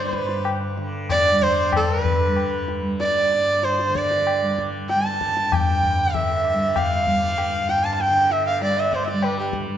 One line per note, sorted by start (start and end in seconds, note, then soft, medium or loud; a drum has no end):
0.00 0.23 G2 medium
0.00 0.77 D3 medium
0.00 1.32 G3 medium
0.00 0.57 C5 medium
0.08 0.16 C5 medium
0.13 0.46 B4 medium
0.13 tabla ke medium
0.23 3.34 G2 medium
0.29 tabla te medium
0.45 tabla na medium
0.77 1.73 D3 medium
0.77 tabla te medium
1.09 1.44 D5 loud
1.09 tabla na medium
1.09 tabla ge medium
1.26 1.85 D5 medium
1.32 2.27 G3 medium
1.42 1.74 C5 loud
1.42 tabla ge medium
1.73 3.89 D3 medium
1.73 1.91 A4 medium
1.73 tabla na loud
1.73 tabla ge medium
1.90 2.02 A#4 medium
1.90 2.81 B4 medium
2.02 2.66 B4 medium
2.02 tabla ge medium
2.27 2.82 G3 medium
2.36 tabla na medium
2.68 tabla te medium
2.82 4.42 G3 medium
3.00 3.65 D5 loud
3.00 tabla te medium
3.16 3.81 D5 medium
3.32 5.46 G2 medium
3.32 tabla te medium
3.63 3.98 C5 medium
3.63 tabla te medium
3.78 4.11 C5 medium
3.78 tabla te medium
3.89 6.02 D3 medium
3.95 4.58 D5 medium
3.95 tabla ke medium
4.10 4.69 D5 medium
4.10 tabla te medium
4.27 tabla na medium
4.42 4.94 G3 medium
4.58 tabla ke medium
4.89 5.07 G5 medium
4.89 tabla te medium
4.94 6.54 G3 medium
5.04 5.68 A5 medium
5.04 5.55 A5 medium
5.04 tabla te medium
5.21 tabla ke medium
5.37 tabla te medium
5.47 7.60 G2 medium
5.52 6.16 G5 loud
5.52 tabla na medium
5.52 tabla ge medium
5.67 6.31 G5 medium
5.83 tabla ge medium
6.02 8.09 D3 medium
6.14 6.78 E5 medium
6.14 tabla tin medium
6.14 tabla ge medium
6.29 6.93 E5 medium
6.45 tabla na medium
6.54 7.06 G3 medium
6.76 7.71 F5 medium
6.76 tabla na medium
6.76 tabla ge medium
6.92 8.03 F5 medium
7.06 8.60 G3 medium
7.06 tabla ge medium
7.38 tabla na medium
7.60 9.66 G2 medium
7.69 7.86 G5 medium
7.69 tabla te medium
7.84 7.94 A5 medium
7.94 8.02 A5 medium
8.00 8.33 G5 loud
8.00 8.15 A5 medium
8.00 tabla te medium
8.10 9.78 D3 medium
8.15 8.46 G5 medium
8.31 8.46 E5 medium
8.31 tabla te medium
8.45 8.77 E5 medium
8.45 8.60 F5 medium
8.60 9.14 G3 medium
8.60 8.81 D5 medium
8.60 tabla te medium
8.77 9.39 D5 medium
8.77 8.96 E5 medium
8.77 tabla te medium
8.93 9.06 C5 medium
8.93 tabla ke medium
9.05 9.25 D5 medium
9.05 9.10 E5 medium
9.05 tabla te medium
9.14 9.78 G3 medium
9.22 9.38 B4 medium
9.22 tabla na medium
9.38 9.52 G4 medium
9.38 9.66 B4 soft
9.53 tabla ke medium
9.67 9.78 G2 medium